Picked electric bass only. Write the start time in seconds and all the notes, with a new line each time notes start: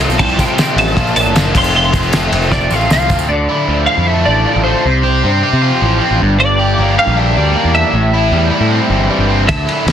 0.08 B1
0.19 C2
0.76 A1
0.97 A#1
1.16 A#1
1.26 F#1
1.55 F1
2.32 F1
2.71 A1
2.90 C2
3.10 D2
3.29 D2
3.68 D2
3.98 F2
4.27 A1
4.56 A1
4.85 C2
5.24 G2
5.53 C3
5.82 A1
6.11 A1
6.21 G1
6.78 G1
7.07 A#1
7.37 D2
7.65 E2
7.93 A1
8.32 E2
8.61 A2
8.90 G1
9.18 G1
9.49 D2
9.86 D2